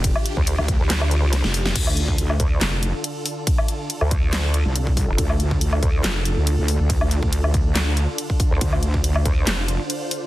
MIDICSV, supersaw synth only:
0, 0, Header, 1, 2, 480
1, 0, Start_track
1, 0, Key_signature, -1, "minor"
1, 0, Tempo, 428571
1, 46, Time_signature, 4, 2, 24, 8
1, 11499, End_track
2, 0, Start_track
2, 0, Title_t, "Supersaw synth"
2, 0, Program_c, 0, 81
2, 0, Note_on_c, 0, 50, 87
2, 0, Note_on_c, 0, 62, 78
2, 0, Note_on_c, 0, 65, 78
2, 0, Note_on_c, 0, 67, 94
2, 1921, Note_off_c, 0, 50, 0
2, 1921, Note_off_c, 0, 62, 0
2, 1922, Note_off_c, 0, 65, 0
2, 1947, Note_off_c, 0, 67, 0
2, 1967, Note_on_c, 0, 50, 85
2, 1967, Note_on_c, 0, 65, 77
2, 1967, Note_on_c, 0, 69, 92
2, 1968, Note_on_c, 0, 62, 77
2, 9627, Note_off_c, 0, 69, 0
2, 9646, Note_on_c, 0, 72, 92
2, 11499, Note_off_c, 0, 50, 0
2, 11499, Note_off_c, 0, 62, 0
2, 11499, Note_off_c, 0, 65, 0
2, 11499, Note_off_c, 0, 72, 0
2, 11499, End_track
0, 0, End_of_file